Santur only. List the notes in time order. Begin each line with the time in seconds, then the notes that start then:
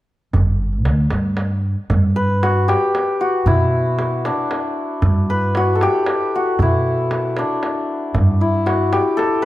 2.16 B4
2.43 F#4
2.68 G4
3.21 F#4
3.47 E4
4.26 D4
5.30 B4
5.57 F#4
5.75 A4
5.83 G4
6.35 F#4
6.62 E4
7.39 D4
8.41 E4
8.66 F#4
8.93 G4
9.17 A4